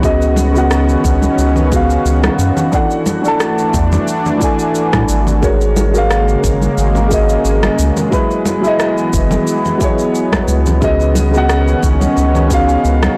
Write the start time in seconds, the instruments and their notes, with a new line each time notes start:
Already playing: analog synth bass C#2, analog synth pad F#4
0.02 grand piano C#3 B3 F#4 D#5, analog synth pad D#3 B3 C#4, kick, shaker
0.22 shaker
0.36 high conga, shaker
0.52 grand piano C#3 B3, shaker
0.56 grand piano F#4 F#5
0.71 cross-stick, shaker
0.89 shaker
1.05 analog synth bass C#2, kick, shaker
1.22 high conga, shaker
1.38 analog synth bass C#2, shaker
1.56 low conga, shaker
1.69 grand piano C#3 B3, kick, shaker
1.73 grand piano F#4 F5
1.90 shaker
2.05 analog synth bass C#2, shaker
2.23 cross-stick, high conga, shaker
2.39 analog synth bass F#2, shaker
2.57 low conga, shaker
2.72 grand piano E3 D4 A4 F#5, analog synth pad E3 A3 D4, kick, shaker
2.91 shaker
3.06 high conga, shaker
3.22 grand piano E3 D4 A4, shaker
3.28 grand piano A5
3.40 cross-stick, shaker
3.58 shaker
3.74 analog synth bass E2, kick, shaker
3.92 high conga, low conga, shaker
4.08 shaker
4.26 low conga, shaker
4.38 grand piano E3 D4, kick, shaker
4.42 grand piano A4 G#5
4.59 shaker
4.75 shaker
4.93 analog synth bass A2, kick, cross-stick, high conga, shaker
5.09 analog synth bass G#1, shaker
5.27 low conga, shaker
5.41 analog synth pad C#3 G#3 A#3, grand piano G#3 F#4 A#4 C#5, kick, shaker
5.61 shaker
5.76 high conga, shaker
5.91 grand piano G#3 F#4, shaker
5.96 grand piano A#4 F5
6.11 cross-stick, shaker
6.28 shaker
6.44 analog synth bass G#1, kick, shaker
6.62 high conga, shaker
6.78 analog synth bass G#1, shaker
6.95 low conga, shaker
7.08 grand piano G#3 F#4 A#4, kick, shaker
7.14 grand piano D#5
7.29 shaker
7.45 analog synth bass G#1, shaker
7.63 cross-stick, high conga, shaker
7.79 analog synth bass C#2, shaker
7.97 low conga, shaker
8.10 analog synth pad E3 B3, grand piano F#3 E4 G#4 B4, kick, shaker
8.31 shaker
8.46 high conga, shaker
8.61 grand piano F#3 E4, shaker
8.65 grand piano G#4 D#5
8.80 cross-stick, shaker
8.98 shaker
9.13 analog synth bass F#1, kick, shaker
9.31 high conga, low conga, shaker
9.47 shaker
9.65 low conga, shaker
9.78 grand piano F#3 E4, kick, shaker
9.82 grand piano G#4 C#5
9.99 shaker
10.15 shaker
10.32 kick, cross-stick, high conga, shaker
10.48 analog synth bass C#2, shaker
10.66 low conga, shaker
10.81 grand piano C#3 B3 F#4 D#5, analog synth pad D#3 C#4 F#4, kick, shaker
11.00 shaker
11.15 high conga, shaker
11.31 grand piano C#3 B3, shaker
11.35 grand piano F#4 F#5
11.49 cross-stick, shaker
11.68 shaker
11.83 analog synth bass C#2, kick, shaker
12.01 high conga, shaker
12.17 analog synth bass C#2, shaker
12.35 low conga, shaker
12.48 grand piano C#3 B3, kick, shaker
12.52 grand piano F#4 F5
12.69 shaker
12.85 analog synth bass C#2, shaker
13.03 cross-stick, high conga, shaker